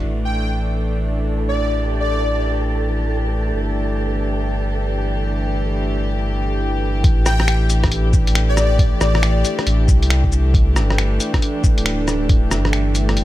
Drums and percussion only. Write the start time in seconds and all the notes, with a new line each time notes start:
7.04 kick, closed hi-hat
7.26 cross-stick, cabasa
7.40 cross-stick
7.48 finger snap, closed hi-hat
7.70 closed hi-hat, cabasa
7.84 kick, cross-stick, closed hi-hat
7.92 closed hi-hat
8.13 kick, cabasa
8.27 closed hi-hat
8.35 finger snap, closed hi-hat
8.57 cross-stick, cabasa
8.79 kick, closed hi-hat
9.01 cross-stick, cabasa
9.15 cross-stick
9.23 finger snap, closed hi-hat
9.45 closed hi-hat, cabasa
9.59 cross-stick, closed hi-hat
9.67 closed hi-hat
9.88 kick, cabasa
10.03 closed hi-hat
10.10 finger snap, closed hi-hat
10.24 kick
10.32 cabasa
10.54 kick, closed hi-hat
10.76 cross-stick, cabasa
10.90 cross-stick
10.98 finger snap, closed hi-hat
11.20 closed hi-hat, cabasa
11.34 kick, cross-stick, closed hi-hat
11.42 closed hi-hat
11.64 kick, cabasa
11.78 closed hi-hat
11.86 finger snap, closed hi-hat
12.08 cross-stick, cabasa
12.29 kick, closed hi-hat
12.51 cross-stick, cabasa
12.65 cross-stick
12.73 finger snap, closed hi-hat
12.95 closed hi-hat, cabasa
13.09 cross-stick, closed hi-hat
13.17 closed hi-hat